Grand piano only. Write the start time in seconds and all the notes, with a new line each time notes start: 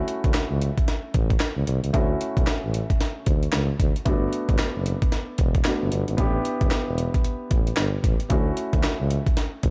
Already playing: A3 C#4 E4 F#4
1.93 A3 C#4 E4 F#4
4.05 A3 B3 D4 F#4
5.66 A3 B3 D4 F#4
6.17 B3 D4 E4 G4
8.30 A3 C#4 E4 F#4